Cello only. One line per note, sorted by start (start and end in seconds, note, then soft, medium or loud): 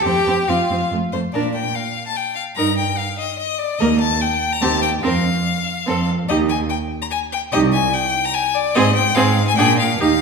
0.05 0.13 F2 medium
0.26 0.34 F2 medium
0.48 0.56 F2 medium
0.70 0.78 F2 soft
0.91 0.99 F2 medium
1.13 1.21 F2 soft
1.34 1.68 A#2 soft
2.57 2.91 G2 soft
3.80 4.14 D#2 medium
4.61 4.96 D#2 medium
5.03 5.38 F2 medium
5.87 6.22 F2 soft
6.29 6.64 D#2 medium
7.53 7.87 C2 medium
8.75 9.09 G#2 medium
9.16 9.51 G#2 medium
9.58 9.93 A#2 medium
10.00 10.21 D#2 medium